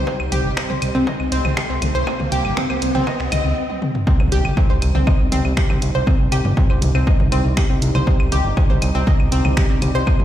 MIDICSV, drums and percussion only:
0, 0, Header, 1, 2, 480
1, 0, Start_track
1, 0, Key_signature, -3, "minor"
1, 0, Tempo, 500000
1, 67, Time_signature, 4, 2, 24, 8
1, 9838, End_track
2, 0, Start_track
2, 0, Title_t, "Drums"
2, 67, Note_on_c, 9, 36, 120
2, 163, Note_off_c, 9, 36, 0
2, 191, Note_on_c, 9, 75, 79
2, 287, Note_off_c, 9, 75, 0
2, 307, Note_on_c, 9, 42, 113
2, 307, Note_on_c, 9, 47, 85
2, 403, Note_off_c, 9, 42, 0
2, 403, Note_off_c, 9, 47, 0
2, 547, Note_on_c, 9, 36, 117
2, 548, Note_on_c, 9, 26, 125
2, 548, Note_on_c, 9, 75, 52
2, 643, Note_off_c, 9, 36, 0
2, 644, Note_off_c, 9, 26, 0
2, 644, Note_off_c, 9, 75, 0
2, 671, Note_on_c, 9, 47, 87
2, 767, Note_off_c, 9, 47, 0
2, 787, Note_on_c, 9, 42, 112
2, 787, Note_on_c, 9, 75, 78
2, 883, Note_off_c, 9, 42, 0
2, 883, Note_off_c, 9, 75, 0
2, 1027, Note_on_c, 9, 36, 127
2, 1027, Note_on_c, 9, 47, 88
2, 1123, Note_off_c, 9, 36, 0
2, 1123, Note_off_c, 9, 47, 0
2, 1151, Note_on_c, 9, 75, 52
2, 1247, Note_off_c, 9, 75, 0
2, 1267, Note_on_c, 9, 42, 116
2, 1363, Note_off_c, 9, 42, 0
2, 1391, Note_on_c, 9, 47, 86
2, 1391, Note_on_c, 9, 75, 75
2, 1487, Note_off_c, 9, 47, 0
2, 1487, Note_off_c, 9, 75, 0
2, 1507, Note_on_c, 9, 26, 120
2, 1507, Note_on_c, 9, 36, 127
2, 1603, Note_off_c, 9, 26, 0
2, 1603, Note_off_c, 9, 36, 0
2, 1747, Note_on_c, 9, 42, 109
2, 1747, Note_on_c, 9, 47, 90
2, 1747, Note_on_c, 9, 75, 53
2, 1843, Note_off_c, 9, 42, 0
2, 1843, Note_off_c, 9, 47, 0
2, 1843, Note_off_c, 9, 75, 0
2, 1987, Note_on_c, 9, 36, 127
2, 1987, Note_on_c, 9, 75, 84
2, 2083, Note_off_c, 9, 36, 0
2, 2083, Note_off_c, 9, 75, 0
2, 2111, Note_on_c, 9, 47, 91
2, 2207, Note_off_c, 9, 47, 0
2, 2227, Note_on_c, 9, 42, 111
2, 2323, Note_off_c, 9, 42, 0
2, 2351, Note_on_c, 9, 75, 53
2, 2447, Note_off_c, 9, 75, 0
2, 2467, Note_on_c, 9, 26, 119
2, 2467, Note_on_c, 9, 36, 123
2, 2467, Note_on_c, 9, 47, 94
2, 2563, Note_off_c, 9, 26, 0
2, 2563, Note_off_c, 9, 36, 0
2, 2563, Note_off_c, 9, 47, 0
2, 2591, Note_on_c, 9, 75, 82
2, 2687, Note_off_c, 9, 75, 0
2, 2707, Note_on_c, 9, 42, 113
2, 2803, Note_off_c, 9, 42, 0
2, 2831, Note_on_c, 9, 47, 89
2, 2927, Note_off_c, 9, 47, 0
2, 2947, Note_on_c, 9, 36, 127
2, 2947, Note_on_c, 9, 75, 54
2, 3043, Note_off_c, 9, 36, 0
2, 3043, Note_off_c, 9, 75, 0
2, 3071, Note_on_c, 9, 26, 37
2, 3167, Note_off_c, 9, 26, 0
2, 3187, Note_on_c, 9, 42, 112
2, 3187, Note_on_c, 9, 47, 92
2, 3187, Note_on_c, 9, 75, 84
2, 3283, Note_off_c, 9, 42, 0
2, 3283, Note_off_c, 9, 47, 0
2, 3283, Note_off_c, 9, 75, 0
2, 3551, Note_on_c, 9, 48, 52
2, 3647, Note_off_c, 9, 48, 0
2, 3667, Note_on_c, 9, 47, 78
2, 3763, Note_off_c, 9, 47, 0
2, 3791, Note_on_c, 9, 45, 85
2, 3887, Note_off_c, 9, 45, 0
2, 3907, Note_on_c, 9, 36, 120
2, 4003, Note_off_c, 9, 36, 0
2, 4032, Note_on_c, 9, 47, 92
2, 4032, Note_on_c, 9, 75, 52
2, 4128, Note_off_c, 9, 47, 0
2, 4128, Note_off_c, 9, 75, 0
2, 4147, Note_on_c, 9, 42, 108
2, 4243, Note_off_c, 9, 42, 0
2, 4272, Note_on_c, 9, 75, 76
2, 4368, Note_off_c, 9, 75, 0
2, 4387, Note_on_c, 9, 36, 115
2, 4388, Note_on_c, 9, 47, 92
2, 4483, Note_off_c, 9, 36, 0
2, 4484, Note_off_c, 9, 47, 0
2, 4628, Note_on_c, 9, 42, 104
2, 4628, Note_on_c, 9, 75, 51
2, 4724, Note_off_c, 9, 42, 0
2, 4724, Note_off_c, 9, 75, 0
2, 4752, Note_on_c, 9, 47, 91
2, 4848, Note_off_c, 9, 47, 0
2, 4867, Note_on_c, 9, 36, 122
2, 4868, Note_on_c, 9, 75, 77
2, 4963, Note_off_c, 9, 36, 0
2, 4964, Note_off_c, 9, 75, 0
2, 5108, Note_on_c, 9, 42, 106
2, 5108, Note_on_c, 9, 47, 95
2, 5204, Note_off_c, 9, 42, 0
2, 5204, Note_off_c, 9, 47, 0
2, 5232, Note_on_c, 9, 75, 50
2, 5328, Note_off_c, 9, 75, 0
2, 5347, Note_on_c, 9, 36, 123
2, 5348, Note_on_c, 9, 26, 123
2, 5443, Note_off_c, 9, 36, 0
2, 5444, Note_off_c, 9, 26, 0
2, 5472, Note_on_c, 9, 47, 94
2, 5472, Note_on_c, 9, 75, 77
2, 5568, Note_off_c, 9, 47, 0
2, 5568, Note_off_c, 9, 75, 0
2, 5588, Note_on_c, 9, 42, 105
2, 5684, Note_off_c, 9, 42, 0
2, 5827, Note_on_c, 9, 36, 123
2, 5828, Note_on_c, 9, 47, 90
2, 5828, Note_on_c, 9, 75, 51
2, 5923, Note_off_c, 9, 36, 0
2, 5924, Note_off_c, 9, 47, 0
2, 5924, Note_off_c, 9, 75, 0
2, 6068, Note_on_c, 9, 42, 110
2, 6068, Note_on_c, 9, 75, 75
2, 6164, Note_off_c, 9, 42, 0
2, 6164, Note_off_c, 9, 75, 0
2, 6192, Note_on_c, 9, 47, 90
2, 6288, Note_off_c, 9, 47, 0
2, 6307, Note_on_c, 9, 36, 122
2, 6403, Note_off_c, 9, 36, 0
2, 6432, Note_on_c, 9, 75, 50
2, 6528, Note_off_c, 9, 75, 0
2, 6548, Note_on_c, 9, 42, 112
2, 6548, Note_on_c, 9, 47, 91
2, 6644, Note_off_c, 9, 42, 0
2, 6644, Note_off_c, 9, 47, 0
2, 6672, Note_on_c, 9, 75, 78
2, 6768, Note_off_c, 9, 75, 0
2, 6787, Note_on_c, 9, 36, 127
2, 6883, Note_off_c, 9, 36, 0
2, 6912, Note_on_c, 9, 47, 88
2, 7008, Note_off_c, 9, 47, 0
2, 7028, Note_on_c, 9, 42, 111
2, 7028, Note_on_c, 9, 75, 52
2, 7124, Note_off_c, 9, 42, 0
2, 7124, Note_off_c, 9, 75, 0
2, 7267, Note_on_c, 9, 36, 124
2, 7268, Note_on_c, 9, 26, 122
2, 7268, Note_on_c, 9, 47, 88
2, 7268, Note_on_c, 9, 75, 77
2, 7363, Note_off_c, 9, 36, 0
2, 7364, Note_off_c, 9, 26, 0
2, 7364, Note_off_c, 9, 47, 0
2, 7364, Note_off_c, 9, 75, 0
2, 7508, Note_on_c, 9, 42, 108
2, 7604, Note_off_c, 9, 42, 0
2, 7632, Note_on_c, 9, 47, 91
2, 7632, Note_on_c, 9, 75, 51
2, 7728, Note_off_c, 9, 47, 0
2, 7728, Note_off_c, 9, 75, 0
2, 7747, Note_on_c, 9, 36, 124
2, 7843, Note_off_c, 9, 36, 0
2, 7872, Note_on_c, 9, 75, 81
2, 7968, Note_off_c, 9, 75, 0
2, 7988, Note_on_c, 9, 42, 111
2, 7988, Note_on_c, 9, 47, 92
2, 8084, Note_off_c, 9, 42, 0
2, 8084, Note_off_c, 9, 47, 0
2, 8228, Note_on_c, 9, 36, 124
2, 8228, Note_on_c, 9, 75, 54
2, 8324, Note_off_c, 9, 36, 0
2, 8324, Note_off_c, 9, 75, 0
2, 8351, Note_on_c, 9, 47, 87
2, 8447, Note_off_c, 9, 47, 0
2, 8467, Note_on_c, 9, 42, 110
2, 8467, Note_on_c, 9, 75, 77
2, 8563, Note_off_c, 9, 42, 0
2, 8563, Note_off_c, 9, 75, 0
2, 8708, Note_on_c, 9, 36, 124
2, 8708, Note_on_c, 9, 47, 88
2, 8804, Note_off_c, 9, 36, 0
2, 8804, Note_off_c, 9, 47, 0
2, 8831, Note_on_c, 9, 75, 51
2, 8927, Note_off_c, 9, 75, 0
2, 8947, Note_on_c, 9, 42, 111
2, 9043, Note_off_c, 9, 42, 0
2, 9071, Note_on_c, 9, 47, 86
2, 9071, Note_on_c, 9, 75, 79
2, 9167, Note_off_c, 9, 47, 0
2, 9167, Note_off_c, 9, 75, 0
2, 9187, Note_on_c, 9, 36, 126
2, 9188, Note_on_c, 9, 26, 119
2, 9283, Note_off_c, 9, 36, 0
2, 9284, Note_off_c, 9, 26, 0
2, 9428, Note_on_c, 9, 42, 107
2, 9428, Note_on_c, 9, 47, 88
2, 9428, Note_on_c, 9, 75, 52
2, 9524, Note_off_c, 9, 42, 0
2, 9524, Note_off_c, 9, 47, 0
2, 9524, Note_off_c, 9, 75, 0
2, 9668, Note_on_c, 9, 36, 121
2, 9668, Note_on_c, 9, 75, 82
2, 9764, Note_off_c, 9, 36, 0
2, 9764, Note_off_c, 9, 75, 0
2, 9791, Note_on_c, 9, 47, 89
2, 9838, Note_off_c, 9, 47, 0
2, 9838, End_track
0, 0, End_of_file